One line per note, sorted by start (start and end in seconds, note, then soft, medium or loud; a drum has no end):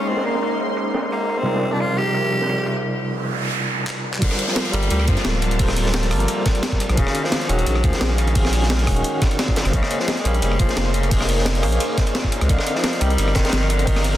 0.00 1.43 G#3 medium
0.00 1.42 A#3 medium
0.00 1.43 C#4 medium
0.00 2.80 D#4 medium
0.00 1.43 A#4 medium
0.00 1.44 C5 medium
0.00 1.45 C#5 medium
0.00 1.45 D#5 medium
0.00 1.43 C6 medium
0.08 0.27 C4 medium
0.08 open hi-hat medium
0.17 snare soft
0.25 0.60 A#3 medium
0.25 ride medium
0.35 snare soft
0.42 ride medium
0.60 ride medium
0.77 ride medium
0.94 snare medium
0.94 ride medium
1.02 ride soft
1.12 1.39 A#3 medium
1.12 ride medium
1.29 ride medium
1.38 1.74 C4 loud
1.43 4.18 C3 medium
1.43 2.82 F3 medium
1.43 4.17 G3 medium
1.43 2.82 C4 medium
1.43 4.19 D#4 medium
1.43 4.19 F4 medium
1.43 2.82 A#4 medium
1.43 2.82 D5 medium
1.43 ride medium
1.47 4.21 A#4 medium
1.47 4.21 D5 medium
1.55 snare soft
1.63 ride medium
1.72 1.82 D4 medium
1.72 snare soft
1.80 1.99 F4 loud
1.80 ride medium
1.98 2.84 G4 loud
1.98 ride medium
2.14 ride medium
2.24 ride soft
2.32 ride medium
2.41 snare soft
2.49 ride medium
2.58 ride soft
2.66 ride medium
2.76 ride soft
2.84 noise sweep medium
3.87 clap loud
4.14 clap medium
4.19 4.30 G1 loud
4.19 4.50 D3 loud
4.19 6.95 F3 medium
4.19 4.70 G3 medium
4.19 6.95 A#3 medium
4.19 6.95 C4 medium
4.19 4.71 F4 medium
4.19 4.71 A4 medium
4.19 6.95 A5 medium
4.19 kick loud
4.19 closed hi-hat loud
4.19 crash loud
4.19 ride medium
4.19 downlifter medium
4.23 4.72 A#4 medium
4.23 4.73 C5 medium
4.31 cross-stick soft
4.31 snare soft
4.39 closed hi-hat medium
4.39 ride medium
4.48 4.73 F3 loud
4.48 snare soft
4.56 snare loud
4.56 closed hi-hat loud
4.56 ride medium
4.65 closed hi-hat soft
4.72 4.89 G1 loud
4.72 4.83 G3 medium
4.72 4.90 G3 loud
4.72 4.83 F4 medium
4.72 4.83 A4 medium
4.72 4.84 A#4 medium
4.72 4.84 D5 loud
4.72 closed hi-hat medium
4.72 ride medium
4.83 closed hi-hat soft
4.90 5.10 D2 medium
4.90 5.07 G3 loud
4.90 closed hi-hat medium
4.90 ride medium
4.99 cross-stick soft
4.99 ride soft
5.08 5.16 G2 loud
5.08 5.44 F3 loud
5.08 kick loud
5.08 closed hi-hat medium
5.08 ride medium
5.16 snare soft
5.16 closed hi-hat soft
5.25 6.13 D1 loud
5.25 snare loud
5.25 closed hi-hat loud
5.25 ride medium
5.34 ride soft
5.42 5.61 D3 loud
5.42 closed hi-hat medium
5.42 ride medium
5.51 closed hi-hat soft
5.51 ride soft
5.57 5.76 C3 loud
5.57 6.08 G3 medium
5.57 6.09 F4 medium
5.57 6.09 A4 medium
5.57 kick loud
5.57 closed hi-hat loud
5.57 open hi-hat medium
5.61 6.10 A#4 medium
5.61 6.11 C5 medium
5.68 cross-stick soft
5.68 snare soft
5.68 snare medium
5.77 6.09 A#2 medium
5.77 closed hi-hat medium
5.77 ride medium
5.86 snare soft
5.94 snare loud
5.94 closed hi-hat medium
5.94 ride medium
6.03 closed hi-hat soft
6.10 6.27 G1 loud
6.10 6.21 G3 medium
6.10 6.21 F4 medium
6.10 6.21 A4 medium
6.10 6.22 A#4 medium
6.10 6.22 D5 loud
6.10 cross-stick medium
6.10 open hi-hat medium
6.10 ride medium
6.20 closed hi-hat soft
6.28 closed hi-hat medium
6.28 ride medium
6.46 kick loud
6.46 snare medium
6.46 closed hi-hat medium
6.46 ride medium
6.55 closed hi-hat soft
6.55 ride soft
6.63 6.92 A#2 medium
6.63 snare loud
6.63 closed hi-hat loud
6.63 ride loud
6.72 kick medium
6.80 closed hi-hat medium
6.80 ride medium
6.89 6.97 A#1 medium
6.89 7.00 C3 loud
6.89 cross-stick soft
6.89 closed hi-hat soft
6.94 7.06 D#1 medium
6.94 7.26 C#3 loud
6.94 7.46 D#3 medium
6.94 9.71 G#3 medium
6.94 7.47 C#4 medium
6.94 12.45 C#4 medium
6.94 7.47 F#4 medium
6.94 9.71 G#4 medium
6.94 9.71 F5 medium
6.94 kick loud
6.94 closed hi-hat medium
6.94 ride medium
6.99 7.48 G#4 medium
6.99 7.49 F5 medium
7.07 cross-stick soft
7.07 snare soft
7.15 closed hi-hat medium
7.15 ride medium
7.24 7.51 F3 loud
7.24 snare soft
7.32 snare loud
7.32 closed hi-hat medium
7.32 ride loud
7.41 closed hi-hat soft
7.48 7.65 D#1 loud
7.48 7.59 D#3 medium
7.48 7.86 F#3 loud
7.48 7.59 C#4 medium
7.48 7.59 F#4 medium
7.48 7.60 G#4 medium
7.48 7.60 F#5 loud
7.48 closed hi-hat medium
7.48 ride medium
7.59 closed hi-hat soft
7.66 7.85 A#1 medium
7.66 closed hi-hat medium
7.66 ride medium
7.76 cross-stick soft
7.76 ride soft
7.84 7.92 D#2 loud
7.84 8.20 F3 loud
7.84 kick loud
7.84 closed hi-hat medium
7.84 ride medium
7.93 snare soft
7.93 closed hi-hat soft
8.01 8.89 A#1 loud
8.01 snare loud
8.01 closed hi-hat loud
8.01 ride loud
8.10 ride soft
8.18 8.37 C#3 loud
8.18 closed hi-hat medium
8.18 ride medium
8.27 closed hi-hat soft
8.27 ride soft
8.33 8.55 C3 loud
8.33 8.84 D#3 medium
8.33 8.85 C#4 medium
8.33 8.85 F#4 medium
8.33 kick loud
8.33 closed hi-hat medium
8.33 open hi-hat medium
8.37 8.86 G#4 medium
8.37 8.87 F5 medium
8.45 cross-stick soft
8.45 snare soft
8.45 snare medium
8.53 8.87 A#2 medium
8.53 closed hi-hat medium
8.53 ride medium
8.62 snare soft
8.70 snare loud
8.70 closed hi-hat medium
8.70 ride medium
8.79 closed hi-hat soft
8.86 9.03 D#1 loud
8.86 8.97 D#3 loud
8.86 8.97 C#4 medium
8.86 8.97 F#4 medium
8.86 8.98 G#4 medium
8.86 8.98 F#5 loud
8.86 kick medium
8.86 cross-stick medium
8.86 open hi-hat medium
8.86 ride medium
8.96 closed hi-hat soft
9.04 closed hi-hat medium
9.22 kick loud
9.22 snare medium
9.22 closed hi-hat medium
9.22 ride medium
9.31 closed hi-hat soft
9.31 ride soft
9.39 9.67 A#2 medium
9.39 snare loud
9.39 closed hi-hat medium
9.39 ride medium
9.48 kick medium
9.56 snare loud
9.56 closed hi-hat medium
9.56 ride medium
9.65 9.73 F#1 medium
9.65 9.75 C3 medium
9.65 cross-stick soft
9.65 closed hi-hat soft
9.70 9.82 A#1 loud
9.70 10.01 C#3 loud
9.70 10.22 A#3 medium
9.70 12.47 A#3 medium
9.70 14.17 D#4 medium
9.70 10.23 G#4 medium
9.70 10.23 C5 medium
9.70 12.46 C6 medium
9.70 kick loud
9.70 closed hi-hat medium
9.70 ride medium
9.75 10.24 C#5 medium
9.75 10.25 D#5 medium
9.83 cross-stick soft
9.83 snare soft
9.91 closed hi-hat medium
9.91 ride medium
10.00 10.20 F3 loud
10.00 snare soft
10.08 snare loud
10.08 closed hi-hat medium
10.08 ride medium
10.17 10.27 G#3 medium
10.17 closed hi-hat soft
10.24 10.41 A#1 loud
10.24 10.59 G3 loud
10.24 10.35 A#3 medium
10.24 10.35 G#4 medium
10.24 10.35 C5 medium
10.24 10.36 C#5 medium
10.24 10.36 F5 loud
10.24 closed hi-hat medium
10.24 ride medium
10.34 closed hi-hat soft
10.42 10.58 F1 medium
10.42 closed hi-hat medium
10.42 ride medium
10.52 cross-stick soft
10.52 ride soft
10.59 10.68 F1 loud
10.59 10.96 F3 loud
10.59 kick loud
10.59 closed hi-hat medium
10.59 ride medium
10.69 snare soft
10.69 closed hi-hat soft
10.77 11.65 F1 loud
10.77 snare loud
10.77 closed hi-hat medium
10.77 ride medium
10.86 ride soft
10.94 11.13 C#3 loud
10.94 closed hi-hat medium
10.94 ride medium
11.03 closed hi-hat soft
11.03 ride soft
11.08 11.30 C3 loud
11.08 11.60 A#3 medium
11.08 11.60 G#4 medium
11.08 11.61 C5 medium
11.08 kick loud
11.08 closed hi-hat medium
11.08 open hi-hat medium
11.13 11.62 C#5 medium
11.13 11.63 D#5 medium
11.21 cross-stick soft
11.21 snare soft
11.21 snare medium
11.29 11.63 A#2 medium
11.29 closed hi-hat medium
11.29 ride medium
11.38 snare soft
11.45 snare loud
11.45 closed hi-hat medium
11.45 ride medium
11.55 closed hi-hat soft
11.62 11.79 A#1 loud
11.62 11.73 A#3 loud
11.62 11.73 G#4 medium
11.62 11.73 C5 medium
11.62 11.74 C#5 medium
11.62 11.74 F5 loud
11.62 cross-stick medium
11.62 open hi-hat medium
11.62 ride medium
11.72 closed hi-hat soft
11.80 closed hi-hat medium
11.80 ride medium
11.98 kick loud
11.98 snare medium
11.98 closed hi-hat medium
11.98 ride medium
12.07 closed hi-hat soft
12.07 ride medium
12.15 12.43 A#2 medium
12.15 snare loud
12.15 closed hi-hat medium
12.15 ride medium
12.24 kick medium
12.32 closed hi-hat medium
12.32 ride medium
12.41 12.49 C#2 medium
12.41 12.51 C3 medium
12.41 cross-stick soft
12.41 closed hi-hat soft
12.46 12.58 C2 loud
12.46 12.78 D3 loud
12.46 14.17 F3 medium
12.46 12.98 C4 medium
12.46 12.98 A#4 medium
12.46 14.17 A#4 medium
12.46 12.99 D5 medium
12.46 kick loud
12.46 closed hi-hat medium
12.46 ride medium
12.51 13.00 D#5 medium
12.51 13.01 F5 medium
12.59 cross-stick soft
12.59 snare soft
12.67 closed hi-hat medium
12.67 ride medium
12.75 13.03 F3 loud
12.75 snare soft
12.84 snare loud
12.84 closed hi-hat medium
12.84 ride medium
12.93 closed hi-hat soft
13.00 13.17 C2 loud
13.00 13.37 G3 loud
13.00 13.11 C4 loud
13.00 13.11 A#4 medium
13.00 13.11 D5 medium
13.00 13.12 D#5 medium
13.00 13.12 G5 loud
13.00 closed hi-hat medium
13.00 ride medium
13.10 closed hi-hat soft
13.18 13.34 G1 medium
13.18 closed hi-hat medium
13.18 ride medium
13.28 cross-stick soft
13.28 ride soft
13.35 13.44 G1 loud
13.35 13.71 D#3 loud
13.35 kick loud
13.35 snare loud
13.35 closed hi-hat medium
13.35 ride medium
13.45 snare medium
13.45 closed hi-hat soft
13.45 ride medium
13.50 snare medium
13.50 ride medium
13.53 14.17 G1 loud
13.53 snare loud
13.53 closed hi-hat loud
13.53 ride medium
13.62 ride soft
13.70 13.89 D3 loud
13.70 closed hi-hat medium
13.70 ride medium
13.79 closed hi-hat soft
13.79 ride soft
13.84 14.06 D#3 loud
13.84 14.17 C4 medium
13.84 14.17 A#4 medium
13.84 14.17 D5 medium
13.84 kick loud
13.84 closed hi-hat loud
13.84 open hi-hat medium
13.90 14.17 F5 medium
13.96 cross-stick soft
13.96 snare medium
13.96 snare soft
14.04 14.17 C3 medium
14.04 closed hi-hat medium
14.04 ride medium
14.14 snare soft